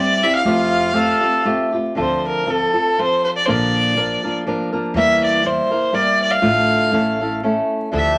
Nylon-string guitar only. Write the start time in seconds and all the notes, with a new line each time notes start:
Already playing: G3 C4 E4 G4
0.24 C4 E4 G4
0.45 F3 A3 C4 F4 G4
0.93 A3 C4 F4 G4
1.21 C4 F4 G4
1.45 A3 C4 F4 G4
1.72 C4 F4 G4
1.95 D3 F3 C4 F4 A4
2.45 F3 C4 F4 A4
2.73 C4 F4 A4
2.98 F3 C4 F4 A4
3.47 A#2 D3 F3 A#3 D4 A#4
3.96 F3 A#3 D4 A#4
4.24 F3 A#3 D4 A#4
4.47 F3 A#3 D4 A#4
4.73 F3 A#3 D4 A#4
4.95 E3 G3 A#3 E4 A#4
5.43 G3 A#3 E4 A#4
5.71 A#3 E4 A#4
5.93 G3 A#3 E4 A#4
6.42 A2 D3 A3 D4 F4 A4
6.92 A3 C#4 E4 A4
7.21 A3 C#4 E4 A4
7.43 A3 C#4 E4 A4
7.92 D3 F3 D4 E4 A4